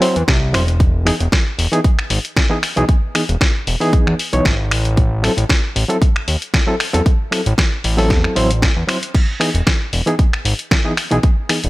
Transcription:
0.01 F#3 C4 E4 C5, open hi-hat
0.16 E2, closed hi-hat
0.28 C2, kick, snare, closed hi-hat
0.53 E1 F#3 C4 E4 C5, finger snap, open hi-hat
0.68 closed hi-hat
0.80 kick, closed hi-hat
1.05 E3 B3 D#4 G#4, finger snap, open hi-hat
1.20 E1, closed hi-hat
1.32 kick, snare, closed hi-hat
1.59 E1, open hi-hat
1.71 E3 B3 D#4 G#4, closed hi-hat
1.84 kick, closed hi-hat
1.99 finger snap
2.10 G#1, open hi-hat
2.25 closed hi-hat
2.37 kick, snare, closed hi-hat
2.50 E3 B3 D#4 G#4
2.63 finger snap, open hi-hat
2.76 B1 E3 B3 D#4 G#4, closed hi-hat
2.89 kick, closed hi-hat
3.15 E3 B3 D#4 G#4, finger snap, open hi-hat
3.29 E1, closed hi-hat
3.41 kick, snare, closed hi-hat
3.67 E1, open hi-hat
3.80 E3 B3 D#4 G#4, open hi-hat
3.93 kick, closed hi-hat
4.07 E2, finger snap
4.19 open hi-hat
4.32 B1 E3 B3 D#4 C#5, closed hi-hat
4.45 G#1, kick, snare, closed hi-hat
4.71 A1, finger snap, open hi-hat
4.85 closed hi-hat
4.97 kick, closed hi-hat
5.22 F#3 C4 E4 A4, finger snap, open hi-hat
5.37 A1, closed hi-hat
5.50 kick, snare, closed hi-hat
5.76 A1, open hi-hat
5.88 F#3 C4 E4 A4, closed hi-hat
6.02 kick, closed hi-hat
6.16 finger snap
6.28 D#2, open hi-hat
6.42 closed hi-hat
6.54 kick, snare, closed hi-hat
6.67 F#3 C4 E4 A4
6.80 finger snap, open hi-hat
6.93 E2 F#3 C4 E4 A4, closed hi-hat
7.06 kick, closed hi-hat
7.31 F#3 C4 E4 A4, finger snap, open hi-hat
7.46 A1, closed hi-hat
7.58 kick, snare, closed hi-hat
7.84 A1, open hi-hat
7.97 F#3 C4 E4 A4, open hi-hat
8.10 E2, kick, snare, closed hi-hat
8.24 finger snap
8.36 A1 F#3 C4 E4 C5, open hi-hat
8.51 closed hi-hat
8.62 kick, snare, closed hi-hat
8.77 E2
8.88 F#3 C4 E4 C5, finger snap, open hi-hat
9.03 closed hi-hat
9.15 kick, closed hi-hat, crash
9.40 E3 B3 D#4 G#4, finger snap, open hi-hat
9.54 E1, closed hi-hat
9.67 kick, snare, closed hi-hat
9.93 E1, open hi-hat
10.06 E3 B3 D#4 G#4, closed hi-hat
10.19 kick, closed hi-hat
10.33 finger snap
10.45 G#1, open hi-hat
10.59 closed hi-hat
10.71 kick, snare, closed hi-hat
10.85 E3 B3 D#4 G#4
10.97 finger snap, open hi-hat
11.11 B1 E3 B3 D#4 G#4, closed hi-hat
11.23 kick, closed hi-hat
11.49 E3 B3 D#4 G#4, finger snap, open hi-hat
11.64 E1, closed hi-hat

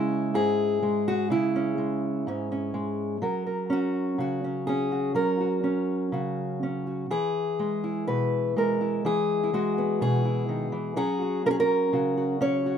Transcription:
Already playing: C#3 G#3 C#4 E4 G#4
0.34 G#2 G#4
0.83 G#3
1.08 F#4
1.30 C#3 E4
1.56 C#4
1.78 G#3
2.27 G#2 C#4
2.52 C#4
2.74 G#3
3.22 F#3 A#4
3.47 A#4
3.70 C#4 F#4
4.18 C#3 F#4
4.44 C#4
4.67 C#4 G#4
4.92 F#4
5.15 F#3 A#4
5.40 F#4
5.64 C#4
6.12 C#3 F#4
6.63 C#4
6.87 F#4
7.11 E3 G#4
7.59 G#3
7.84 E4
8.08 B2 B4
8.56 G#3 A#4
8.81 E4
9.05 E3 G#4
9.43 E4
9.53 G#3 F#4
9.78 B3
10.01 B2 G#4
10.25 E4
10.49 D#3
10.72 E3
10.96 F#3 C#4 F#4 G#4
11.22 F#4
11.46 C#4 A#4
11.51 G#4
11.60 A#4
11.93 C#3 F#4
12.17 F#4
12.41 C#4 C#5
12.66 F#4

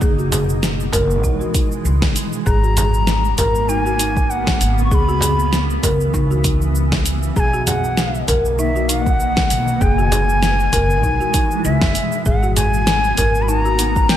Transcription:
Already playing: B2
0.01 F#1 E3 G#3 G#4, kick, cabasa
0.19 F#4, cabasa
0.32 G#4, open hi-hat, frame drum, cabasa
0.49 cabasa
0.63 snare, cabasa
0.80 cabasa
0.93 F#1 A#4, kick, open hi-hat, frame drum, cabasa
1.10 cabasa
1.24 B1 D#4, kick, cabasa
1.41 F#4, cabasa
1.54 D#4, kick, open hi-hat, cabasa
1.72 cabasa
1.85 C#2, cabasa
2.02 kick, snare, cabasa
2.16 open hi-hat, cabasa
2.33 cabasa
2.46 G#1 C#3 A#3 B3 F#4 G#4 A#5, kick, cabasa
2.63 F#4, cabasa
2.77 G#4, open hi-hat, frame drum, cabasa
2.94 cabasa
3.07 snare, cabasa
3.25 cabasa
3.38 G#1 A#4 A#5, kick, open hi-hat, frame drum, cabasa
3.55 cabasa
3.69 D#4 G#5, cabasa
3.86 F#4, cabasa
3.99 D#4, open hi-hat, cabasa
4.17 kick, cabasa
4.30 F#5, cabasa
4.47 kick, snare, cabasa
4.61 G#1, open hi-hat, cabasa
4.78 cabasa
4.85 C#6
4.91 C#2 E3 G#4 B5 C#6, kick, cabasa
5.08 F#4, cabasa
5.21 G#4, open hi-hat, frame drum, cabasa
5.39 cabasa
5.53 snare, cabasa
5.70 cabasa
5.83 C#2 A#4, kick, open hi-hat, frame drum, cabasa
6.01 cabasa
6.14 C#2 D#4, kick, cabasa
6.31 F#4, cabasa
6.44 D#4, kick, open hi-hat, cabasa
6.62 cabasa
6.75 cabasa
6.92 kick, snare, cabasa
7.06 open hi-hat, cabasa
7.23 cabasa
7.36 B1 B2 D#3 A#3 G#4 G#5 A#5, kick, cabasa
7.54 F#4, cabasa
7.67 G#4 F#5, open hi-hat, frame drum, cabasa
7.84 cabasa
7.97 snare, cabasa
8.15 cabasa
8.28 B1 A#4, kick, open hi-hat, frame drum, cabasa
8.45 cabasa
8.58 D#4 E5, cabasa
8.76 F#4, cabasa
8.89 D#4 F5, open hi-hat, cabasa
9.01 F#5
9.06 kick, cabasa
9.20 cabasa
9.37 kick, snare, cabasa
9.50 B1, open hi-hat, cabasa
9.68 cabasa
9.81 F#1 E3 G#3 G#4 G5, kick, cabasa
9.92 G#5
9.98 F#4, cabasa
10.12 G#4, open hi-hat, frame drum, cabasa
10.29 cabasa
10.43 snare, cabasa
10.60 cabasa
10.73 F#1 A#4, kick, open hi-hat, frame drum, cabasa
10.90 cabasa
11.03 B1 D#4, kick, cabasa
11.20 F#4, cabasa
11.34 D#4, kick, open hi-hat, cabasa
11.51 cabasa
11.65 C#2 E5, cabasa
11.82 F#1, kick, snare, frame drum, cabasa
11.95 open hi-hat, cabasa
12.12 cabasa
12.26 G#1 C#3 A#3 B3 F#4 G#4 F#5, kick, cabasa
12.43 F#4, cabasa
12.56 G#4 G#5, open hi-hat, frame drum, cabasa
12.74 cabasa
12.87 snare, cabasa
13.04 cabasa
13.17 G#1 A#4, kick, open hi-hat, frame drum, cabasa
13.35 cabasa
13.42 B5
13.48 D#4 A5, cabasa
13.59 A#5
13.65 F#4, cabasa
13.79 D#4, open hi-hat, cabasa
13.96 kick, cabasa
14.09 G#5, snare, cabasa

